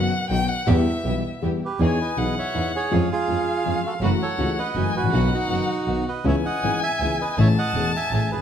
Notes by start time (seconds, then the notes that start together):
Already playing: F#5
0.29 B1 B2 D#3 F#3 B3 D#4 F#4 G5
0.49 F#5
0.66 E2 E3 G3 B3 E4 G4 E5
1.04 B1 B2 E3 G3 B3 E4 G4
1.42 E2 E3 G3 B3 E4 G4
1.65 G4 B4
1.79 E2 E3 B3 D#4 E4 G#4 G#5
1.84 C#5
2.01 B4 D#5
2.17 B1 B2 E3 B3 D#4 E4 G#4 F#5
2.39 C#5 E5
2.54 E2 E3 B3 D#4 E4 G#4
2.76 G#4 C#5
2.91 F2 F3 G#3 C#4 F4 G#4 F5
3.12 F4 G#4
3.28 F2 F3 G#3 C#4 F4 G#4
3.64 F2 F3 G#3 C#4 F4 G#4
3.86 F#4 A4
4.01 F#1 F#2 E3 F#3 A3 C#4 E4 F#4 B4 F#5
4.22 A4 C#5
4.38 C#2 C#3 E3 A3 C#4 E4 F#4
4.59 B4 D#5
4.75 F#1 F#2 E3 F#3 A3 C#4 E4 F#4 G#5
4.94 A1 F#4 B4
4.99 G#1
5.03 A1
5.07 A#1
5.12 B1 B2 D#3 F#3 B3 D#4 F#4 F#5
5.33 D#4 F#4
5.49 F#1 F#2 D#3 F#3 B3 D#4 F#4
5.86 B1 B2 D#3 F#3 B3 D#4 F#4
6.08 B4 D#5
6.25 C#2 C#3 E3 B3 C#4 E4 G#4 C#5 E5 G#5
6.45 D#5 F#5
6.62 G#1 G#2 E3 B3 C#4 E4 G#4
6.83 E5 G#5
7.00 C#2 C#3 E3 B3 C#4 E4 G#4
7.21 B4 D#5
7.37 A1 A2 E3 A3 C#4 G#4 C#5 E5 A5
7.58 D#5 F#5
7.74 E1 E2 E3 A3 C#4 G#4
7.96 E5 G#5
8.11 A1 A2 E3 A3 C#4 G#4 E5 G#5
8.29 A1 G#4 B4
8.33 G#1